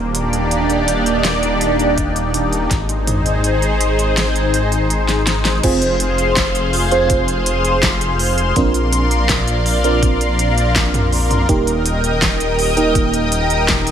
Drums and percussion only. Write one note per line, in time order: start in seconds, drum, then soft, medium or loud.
0.15 closed hi-hat medium
0.33 closed hi-hat soft
0.51 closed hi-hat medium
0.70 closed hi-hat soft
0.88 closed hi-hat medium
1.06 closed hi-hat soft
1.25 snare loud
1.25 closed hi-hat medium
1.43 closed hi-hat soft
1.61 closed hi-hat medium
1.79 closed hi-hat soft
1.98 kick medium
1.98 closed hi-hat medium
2.16 closed hi-hat soft
2.34 closed hi-hat medium
2.53 closed hi-hat soft
2.71 kick loud
2.71 snare soft
2.71 closed hi-hat medium
2.89 closed hi-hat soft
3.07 closed hi-hat loud
3.07 mid tom medium
3.26 closed hi-hat soft
3.44 closed hi-hat medium
3.62 closed hi-hat soft
3.81 closed hi-hat loud
3.99 closed hi-hat soft
4.17 snare loud
4.17 closed hi-hat medium
4.36 closed hi-hat soft
4.54 closed hi-hat medium
4.72 closed hi-hat soft
4.90 closed hi-hat medium
5.09 snare medium
5.09 closed hi-hat soft
5.27 snare medium
5.27 closed hi-hat medium
5.45 snare medium
5.45 closed hi-hat soft
5.63 kick loud
5.63 closed hi-hat medium
5.63 crash loud
5.82 closed hi-hat soft
6.00 closed hi-hat loud
6.18 closed hi-hat soft
6.37 kick loud
6.37 snare loud
6.37 clap loud
6.37 closed hi-hat medium
6.55 closed hi-hat soft
6.73 open hi-hat medium
6.91 closed hi-hat soft
7.10 kick loud
7.10 closed hi-hat medium
7.28 closed hi-hat soft
7.46 closed hi-hat loud
7.65 closed hi-hat soft
7.83 kick loud
7.83 snare loud
7.83 clap loud
7.83 closed hi-hat medium
8.01 closed hi-hat soft
8.19 open hi-hat medium
8.38 closed hi-hat soft
8.56 kick loud
8.56 closed hi-hat medium
8.74 closed hi-hat soft
8.93 closed hi-hat loud
9.11 closed hi-hat soft
9.29 kick loud
9.29 snare loud
9.29 clap medium
9.29 closed hi-hat medium
9.48 closed hi-hat soft
9.66 open hi-hat medium
9.84 closed hi-hat soft
10.03 kick loud
10.03 closed hi-hat medium
10.21 closed hi-hat soft
10.39 closed hi-hat loud
10.58 closed hi-hat soft
10.76 kick loud
10.76 snare loud
10.76 clap loud
10.76 closed hi-hat medium
10.94 closed hi-hat soft
10.94 mid tom medium
11.13 open hi-hat medium
11.31 closed hi-hat soft
11.31 mid tom medium
11.49 kick loud
11.49 closed hi-hat medium
11.67 closed hi-hat soft
11.86 closed hi-hat loud
12.04 closed hi-hat soft
12.22 kick loud
12.22 snare loud
12.22 clap loud
12.22 closed hi-hat medium
12.40 closed hi-hat soft
12.59 open hi-hat medium
12.77 closed hi-hat soft
12.95 kick loud
12.95 closed hi-hat medium
13.14 closed hi-hat soft
13.32 closed hi-hat loud
13.50 closed hi-hat soft
13.68 kick loud
13.68 snare loud
13.68 clap medium
13.68 closed hi-hat medium
13.87 closed hi-hat soft